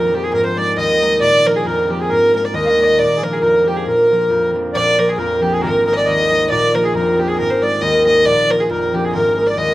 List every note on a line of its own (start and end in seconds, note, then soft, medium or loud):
0.00 0.37 F2 medium
0.00 0.12 F3 soft
0.00 0.14 A#3 soft
0.00 0.48 C4 medium
0.00 0.13 D4 medium
0.00 0.14 A#4 medium
0.00 0.16 A#4 medium
0.13 0.37 F3 medium
0.13 0.57 A#3 soft
0.13 0.64 D4 medium
0.13 0.25 G4 medium
0.13 0.24 G4 medium
0.23 0.33 G#4 medium
0.33 0.82 G#2 medium
0.33 0.45 A#4 medium
0.33 0.44 A#4 loud
0.44 0.57 C5 medium
0.44 0.59 C5 medium
0.57 1.00 G#3 soft
0.57 1.02 A#3 soft
0.57 1.02 D#4 medium
0.57 0.77 D5 medium
0.57 0.77 D5 loud
0.76 1.26 D#2 medium
0.76 1.22 D#5 medium
0.76 1.19 D#5 loud
1.01 1.26 G#3 soft
1.01 1.45 A#3 soft
1.01 1.52 D#4 medium
1.20 1.70 A#2 medium
1.20 1.46 D5 medium
1.20 1.48 D5 loud
1.45 1.88 F3 soft
1.45 1.90 A#3 soft
1.45 1.90 D4 soft
1.45 1.55 A#4 medium
1.45 1.57 A#4 medium
1.56 1.65 G#4 medium
1.56 1.68 G#4 medium
1.65 2.14 F2 medium
1.65 1.91 A#4 medium
1.65 1.92 A#4 medium
1.89 2.14 F3 medium
1.89 2.34 A#3 soft
1.89 2.40 D4 medium
1.89 1.99 G4 medium
1.89 2.03 G4 medium
2.00 2.10 G#4 medium
2.00 2.12 G#4 medium
2.09 2.58 G#2 medium
2.09 2.32 A#4 medium
2.09 2.34 A#4 loud
2.33 2.77 G#3 soft
2.33 2.78 A#3 soft
2.33 2.78 D#4 soft
2.33 2.43 A#4 medium
2.33 2.46 A#4 medium
2.45 2.54 D5 medium
2.45 2.56 D5 medium
2.53 3.02 D#2 medium
2.53 2.66 D#5 medium
2.53 3.00 D#5 loud
2.66 2.81 D#5 medium
2.66 2.68 F5 medium
2.78 3.02 G#3 soft
2.78 3.22 A#3 soft
2.78 3.29 D#4 medium
2.82 2.84 D5 medium
2.82 2.98 D#5 medium
2.98 3.47 A#2 medium
2.98 3.17 D5 medium
2.98 3.25 D5 loud
3.16 3.22 G#4 soft
3.22 3.66 F3 soft
3.22 3.67 A#3 soft
3.22 3.68 D4 medium
3.22 3.39 A#4 medium
3.22 3.34 A#4 medium
3.33 3.44 G#4 medium
3.40 3.91 F2 medium
3.40 3.67 A#4 medium
3.40 3.69 A#4 medium
3.67 3.91 F3 soft
3.67 4.11 A#3 soft
3.67 4.12 D4 medium
3.67 3.84 G4 medium
3.67 3.78 G4 medium
3.77 3.88 G#4 medium
3.86 4.35 A#2 medium
3.86 4.55 A#4 medium
3.86 4.51 A#4 medium
4.11 4.53 F3 soft
4.11 4.54 A#3 soft
4.11 4.55 D4 soft
4.30 4.79 F2 medium
4.54 4.79 F3 soft
4.54 4.98 A#3 soft
4.54 4.99 D4 medium
4.73 5.67 A#1 medium
4.73 5.23 A#2 medium
4.73 5.09 D5 medium
4.73 5.01 D5 loud
4.98 5.41 F3 soft
4.98 5.42 A#3 soft
4.98 5.42 D4 soft
4.98 5.11 A#4 loud
5.09 5.18 G#4 medium
5.09 5.17 G#4 medium
5.17 5.67 F2 medium
5.17 5.41 A#4 medium
5.17 5.44 A#4 medium
5.42 5.67 F3 medium
5.42 5.87 A#3 soft
5.42 5.94 D4 medium
5.42 5.55 G4 medium
5.42 5.53 G4 medium
5.52 5.61 G#4 medium
5.52 5.63 G#4 medium
5.61 6.55 G#1 medium
5.61 6.11 G#2 medium
5.61 5.86 A#4 loud
5.61 5.84 A#4 medium
5.86 6.29 G#3 soft
5.86 6.30 A#3 soft
5.86 6.31 D#4 soft
5.86 5.96 A#4 medium
5.86 5.95 A#4 medium
5.93 6.08 D5 loud
5.93 6.05 D5 medium
5.93 5.98 D#5 medium
6.05 6.55 D#2 medium
6.05 6.51 D#5 medium
6.05 6.49 D#5 loud
6.30 6.55 G#3 soft
6.30 6.75 A#3 soft
6.30 6.82 D#4 medium
6.49 7.43 A#1 medium
6.49 6.99 A#2 medium
6.49 6.72 D5 medium
6.49 6.77 D5 loud
6.74 7.17 F3 soft
6.74 7.18 A#3 soft
6.74 7.19 D4 medium
6.74 6.84 A#4 medium
6.74 6.87 A#4 loud
6.84 6.94 G#4 medium
6.84 6.96 G#4 medium
6.94 7.43 F2 medium
6.94 7.19 A#4 medium
6.94 7.21 A#4 medium
7.18 7.43 F3 soft
7.18 7.63 A#3 soft
7.18 7.69 D4 medium
7.18 7.29 G4 medium
7.18 7.28 G4 medium
7.28 7.37 G#4 loud
7.28 7.38 G#4 medium
7.38 8.30 G#1 medium
7.38 7.86 G#2 medium
7.38 7.51 A#4 loud
7.38 7.64 A#4 medium
7.50 7.64 C5 medium
7.62 8.04 G#3 medium
7.62 8.05 A#3 soft
7.62 8.06 D#4 soft
7.62 7.83 D5 loud
7.62 7.82 D5 medium
7.81 8.30 D#2 medium
7.81 8.06 D#5 loud
7.81 8.07 D#5 medium
8.05 8.30 G#3 soft
8.05 8.49 A#3 soft
8.05 8.56 D#4 soft
8.05 8.27 D#5 loud
8.05 8.27 D#5 medium
8.25 9.18 A#1 medium
8.25 8.74 A#2 medium
8.25 8.52 D5 loud
8.25 8.56 D5 medium
8.49 8.93 F3 soft
8.49 8.94 A#3 soft
8.49 8.94 D4 medium
8.49 8.62 A#4 loud
8.58 8.64 G#4 medium
8.58 8.71 G#4 medium
8.58 8.60 A#4 medium
8.69 9.18 F2 medium
8.69 8.96 A#4 medium
8.69 8.95 A#4 medium
8.94 9.18 F3 medium
8.94 9.38 A#3 soft
8.94 9.44 D4 medium
8.94 9.06 G4 medium
8.94 9.04 G4 medium
9.05 9.12 G#4 medium
9.05 9.14 G#4 medium
9.13 9.74 G#1 medium
9.13 9.62 G#2 medium
9.13 9.36 A#4 loud
9.13 9.38 A#4 medium
9.37 9.74 G#3 soft
9.37 9.74 A#3 soft
9.37 9.74 D#4 medium
9.37 9.48 A#4 medium
9.37 9.49 A#4 medium
9.47 9.59 D5 medium
9.47 9.57 D5 medium
9.57 9.74 D#2 medium
9.57 9.74 D#5 loud
9.57 9.74 D#5 medium